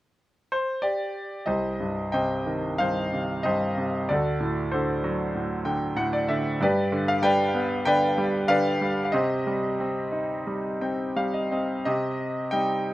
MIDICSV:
0, 0, Header, 1, 2, 480
1, 0, Start_track
1, 0, Key_signature, -3, "minor"
1, 0, Tempo, 634249
1, 1114, Time_signature, 4, 2, 24, 8
1, 1114, Tempo, 662983
1, 2554, Tempo, 630252
1, 6874, Tempo, 668151
1, 7834, Tempo, 701754
1, 8794, Tempo, 657895
1, 9570, End_track
2, 0, Start_track
2, 0, Title_t, "Grand piano"
2, 0, Program_c, 0, 0
2, 393, Note_on_c, 0, 72, 68
2, 620, Note_on_c, 0, 74, 70
2, 628, Note_on_c, 0, 67, 50
2, 634, Note_off_c, 0, 72, 0
2, 1102, Note_off_c, 0, 67, 0
2, 1103, Note_on_c, 0, 75, 60
2, 1110, Note_on_c, 0, 36, 44
2, 1113, Note_on_c, 0, 67, 43
2, 1113, Note_on_c, 0, 72, 46
2, 1126, Note_off_c, 0, 74, 0
2, 1251, Control_c, 0, 64, 127
2, 1353, Note_on_c, 0, 43, 42
2, 1581, Note_off_c, 0, 75, 0
2, 1584, Note_on_c, 0, 79, 61
2, 1585, Note_off_c, 0, 72, 0
2, 1592, Note_on_c, 0, 75, 50
2, 1595, Note_on_c, 0, 48, 39
2, 1595, Note_on_c, 0, 72, 43
2, 1831, Note_on_c, 0, 51, 41
2, 2048, Note_off_c, 0, 67, 0
2, 2061, Note_off_c, 0, 43, 0
2, 2064, Note_on_c, 0, 77, 75
2, 2066, Note_off_c, 0, 72, 0
2, 2072, Note_on_c, 0, 43, 37
2, 2077, Note_on_c, 0, 72, 50
2, 2086, Note_off_c, 0, 79, 0
2, 2303, Note_off_c, 0, 48, 0
2, 2314, Note_on_c, 0, 48, 39
2, 2522, Note_off_c, 0, 75, 0
2, 2533, Note_on_c, 0, 75, 66
2, 2534, Note_off_c, 0, 43, 0
2, 2539, Note_off_c, 0, 72, 0
2, 2545, Note_on_c, 0, 43, 44
2, 2546, Note_on_c, 0, 67, 49
2, 2550, Note_on_c, 0, 72, 51
2, 2561, Note_off_c, 0, 77, 0
2, 2765, Note_off_c, 0, 51, 0
2, 2781, Note_off_c, 0, 48, 0
2, 2792, Note_on_c, 0, 48, 39
2, 2997, Note_off_c, 0, 75, 0
2, 3004, Note_off_c, 0, 67, 0
2, 3006, Note_off_c, 0, 36, 0
2, 3006, Note_off_c, 0, 72, 0
2, 3020, Note_off_c, 0, 43, 0
2, 3029, Note_off_c, 0, 48, 0
2, 3031, Note_on_c, 0, 74, 61
2, 3035, Note_on_c, 0, 38, 49
2, 3047, Control_c, 0, 64, 0
2, 3050, Note_on_c, 0, 66, 43
2, 3050, Note_on_c, 0, 69, 46
2, 3201, Control_c, 0, 64, 127
2, 3273, Note_on_c, 0, 45, 48
2, 3509, Note_on_c, 0, 72, 55
2, 3514, Note_off_c, 0, 66, 0
2, 3516, Note_off_c, 0, 69, 0
2, 3523, Note_on_c, 0, 50, 44
2, 3526, Note_on_c, 0, 66, 37
2, 3527, Note_on_c, 0, 69, 39
2, 3528, Note_off_c, 0, 74, 0
2, 3756, Note_on_c, 0, 54, 49
2, 3984, Note_off_c, 0, 45, 0
2, 3995, Note_on_c, 0, 45, 40
2, 4210, Note_off_c, 0, 50, 0
2, 4221, Note_on_c, 0, 50, 41
2, 4221, Note_on_c, 0, 79, 56
2, 4433, Note_off_c, 0, 72, 0
2, 4442, Note_off_c, 0, 66, 0
2, 4442, Note_off_c, 0, 69, 0
2, 4448, Note_off_c, 0, 45, 0
2, 4448, Note_off_c, 0, 79, 0
2, 4459, Note_on_c, 0, 45, 53
2, 4462, Note_on_c, 0, 78, 64
2, 4578, Note_off_c, 0, 78, 0
2, 4587, Note_on_c, 0, 74, 65
2, 4683, Note_off_c, 0, 54, 0
2, 4695, Note_off_c, 0, 50, 0
2, 4701, Note_off_c, 0, 74, 0
2, 4705, Note_on_c, 0, 76, 61
2, 4706, Note_on_c, 0, 50, 51
2, 4918, Note_off_c, 0, 38, 0
2, 4931, Note_off_c, 0, 76, 0
2, 4932, Note_off_c, 0, 45, 0
2, 4941, Note_off_c, 0, 50, 0
2, 4948, Note_on_c, 0, 43, 60
2, 4962, Control_c, 0, 64, 0
2, 4964, Note_on_c, 0, 74, 74
2, 4970, Note_on_c, 0, 67, 54
2, 4970, Note_on_c, 0, 71, 56
2, 5106, Control_c, 0, 64, 127
2, 5190, Note_on_c, 0, 50, 55
2, 5312, Note_on_c, 0, 77, 75
2, 5324, Note_off_c, 0, 74, 0
2, 5421, Note_on_c, 0, 55, 50
2, 5422, Note_off_c, 0, 71, 0
2, 5422, Note_on_c, 0, 79, 92
2, 5431, Note_off_c, 0, 77, 0
2, 5431, Note_on_c, 0, 74, 58
2, 5433, Note_on_c, 0, 71, 61
2, 5664, Note_on_c, 0, 59, 55
2, 5871, Note_off_c, 0, 79, 0
2, 5882, Note_off_c, 0, 67, 0
2, 5893, Note_off_c, 0, 50, 0
2, 5900, Note_off_c, 0, 74, 0
2, 5900, Note_on_c, 0, 79, 96
2, 5902, Note_off_c, 0, 71, 0
2, 5904, Note_on_c, 0, 50, 50
2, 5912, Note_on_c, 0, 74, 70
2, 5913, Note_on_c, 0, 71, 68
2, 6134, Note_off_c, 0, 55, 0
2, 6146, Note_on_c, 0, 55, 52
2, 6369, Note_off_c, 0, 50, 0
2, 6378, Note_on_c, 0, 77, 88
2, 6379, Note_off_c, 0, 71, 0
2, 6379, Note_off_c, 0, 74, 0
2, 6381, Note_on_c, 0, 50, 58
2, 6390, Note_on_c, 0, 74, 65
2, 6391, Note_on_c, 0, 71, 59
2, 6397, Note_off_c, 0, 79, 0
2, 6597, Note_off_c, 0, 59, 0
2, 6619, Note_off_c, 0, 55, 0
2, 6630, Note_on_c, 0, 55, 48
2, 6785, Note_off_c, 0, 77, 0
2, 6807, Note_on_c, 0, 77, 47
2, 6840, Note_off_c, 0, 43, 0
2, 6844, Note_off_c, 0, 71, 0
2, 6844, Note_off_c, 0, 74, 0
2, 6855, Note_off_c, 0, 50, 0
2, 6864, Note_on_c, 0, 75, 68
2, 6866, Note_off_c, 0, 77, 0
2, 6867, Note_off_c, 0, 55, 0
2, 6877, Note_on_c, 0, 48, 59
2, 6879, Note_on_c, 0, 72, 46
2, 6881, Note_on_c, 0, 67, 51
2, 6882, Control_c, 0, 64, 0
2, 6992, Control_c, 0, 64, 127
2, 7114, Note_on_c, 0, 55, 47
2, 7353, Note_on_c, 0, 60, 51
2, 7582, Note_on_c, 0, 63, 44
2, 7800, Note_off_c, 0, 75, 0
2, 7807, Note_off_c, 0, 72, 0
2, 7808, Note_off_c, 0, 67, 0
2, 7823, Note_off_c, 0, 55, 0
2, 7833, Note_on_c, 0, 55, 38
2, 8059, Note_off_c, 0, 60, 0
2, 8069, Note_on_c, 0, 60, 39
2, 8069, Note_on_c, 0, 79, 47
2, 8296, Note_off_c, 0, 79, 0
2, 8298, Note_off_c, 0, 55, 0
2, 8308, Note_on_c, 0, 55, 42
2, 8310, Note_on_c, 0, 77, 57
2, 8426, Note_off_c, 0, 77, 0
2, 8427, Note_on_c, 0, 75, 49
2, 8527, Note_off_c, 0, 63, 0
2, 8540, Note_off_c, 0, 60, 0
2, 8542, Note_off_c, 0, 75, 0
2, 8551, Note_on_c, 0, 60, 36
2, 8552, Note_on_c, 0, 75, 44
2, 8768, Note_off_c, 0, 48, 0
2, 8771, Note_off_c, 0, 75, 0
2, 8776, Note_off_c, 0, 55, 0
2, 8781, Note_on_c, 0, 75, 71
2, 8783, Note_off_c, 0, 60, 0
2, 8786, Note_on_c, 0, 48, 53
2, 8796, Note_on_c, 0, 67, 47
2, 8801, Control_c, 0, 64, 0
2, 8937, Control_c, 0, 64, 127
2, 9259, Note_on_c, 0, 79, 74
2, 9269, Note_on_c, 0, 55, 42
2, 9272, Note_on_c, 0, 60, 38
2, 9274, Note_on_c, 0, 63, 43
2, 9286, Note_off_c, 0, 75, 0
2, 9570, Note_off_c, 0, 48, 0
2, 9570, Note_off_c, 0, 55, 0
2, 9570, Note_off_c, 0, 60, 0
2, 9570, Note_off_c, 0, 63, 0
2, 9570, Note_off_c, 0, 67, 0
2, 9570, Note_off_c, 0, 79, 0
2, 9570, End_track
0, 0, End_of_file